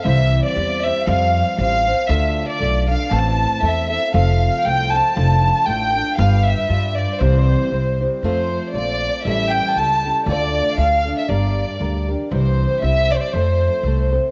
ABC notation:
X:1
M:2/4
L:1/16
Q:"Swing" 1/4=118
K:C
V:1 name="Violin section"
e3 d3 e2 | f4 f4 | e3 d3 f2 | a4 e2 e2 |
f4 g2 a2- | a4 g4 | f2 e4 d2 | c6 z2 |
[K:F] c4 d4 | e2 g2 a3 z | d4 f3 e | d6 z2 |
c4 e2 d/2 c/2 d | c6 z2 |]
V:2 name="Nylon-string guitar"
[C,E,G,CEc]4 [G,CEc]2 [G,CEc]2 | [F,G,CFc]4 [G,CFc]2 [CFc]2 | [D,A,DFA]4 [A,DFA]2 [DFA]2 | [A,,E,A,CEA]4 [A,CEA]2 [A,CEA]2 |
[F,A,CFA]4 [A,CFA]2 [CFA]2 | [F,A,DFA]4 [A,DFA]2 [DFA]2 | [G,DFB]4 [G,DFB]4 | [C,E,G,CEc]4 [G,CEc]2 [G,CEc]2 |
[K:F] [F,A,CFA]4 [A,CFA]4 | [A,,E,G,^CEA]4 [G,CEA]2 [G,CEA]2 | [D,A,DFA]4 [A,DFA]2 [DFA]2 | [G,DGB]4 [G,DGB]2 [DGB]2 |
[C,E,G,CEc]4 [G,CEc]2 [G,CEc]2 | [F,A,CAc]4 [A,CAc]2 [CAc]2 |]
V:3 name="Upright bass" clef=bass
C,,4 E,,4 | F,,4 A,,,4 | D,,4 B,,,4 | A,,,4 E,,4 |
F,,,4 C,,4 | F,,,4 A,,,4 | G,,,4 G,,4 | C,,4 C,,4 |
[K:F] F,,4 B,,,4 | A,,,4 ^C,,4 | D,,4 D,,4 | G,,,4 D,,4 |
C,,4 C,,4 | F,,4 C,,4 |]